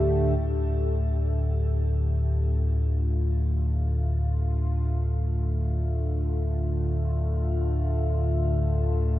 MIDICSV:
0, 0, Header, 1, 4, 480
1, 0, Start_track
1, 0, Key_signature, -1, "minor"
1, 0, Tempo, 500000
1, 8822, End_track
2, 0, Start_track
2, 0, Title_t, "Synth texture"
2, 0, Program_c, 0, 99
2, 0, Note_on_c, 0, 69, 79
2, 409, Note_off_c, 0, 69, 0
2, 8822, End_track
3, 0, Start_track
3, 0, Title_t, "Analog synth pad"
3, 0, Program_c, 1, 89
3, 0, Note_on_c, 1, 50, 64
3, 0, Note_on_c, 1, 57, 72
3, 0, Note_on_c, 1, 67, 61
3, 2273, Note_on_c, 1, 65, 88
3, 2559, Note_off_c, 1, 67, 0
3, 8822, Note_off_c, 1, 50, 0
3, 8822, Note_off_c, 1, 57, 0
3, 8822, Note_off_c, 1, 65, 0
3, 8822, End_track
4, 0, Start_track
4, 0, Title_t, "Synth drone"
4, 0, Program_c, 2, 95
4, 0, Note_on_c, 2, 38, 76
4, 0, Note_on_c, 2, 45, 77
4, 359, Note_off_c, 2, 45, 0
4, 364, Note_off_c, 2, 38, 0
4, 370, Note_on_c, 2, 45, 87
4, 376, Note_on_c, 2, 38, 77
4, 8822, Note_off_c, 2, 38, 0
4, 8822, Note_off_c, 2, 45, 0
4, 8822, End_track
0, 0, End_of_file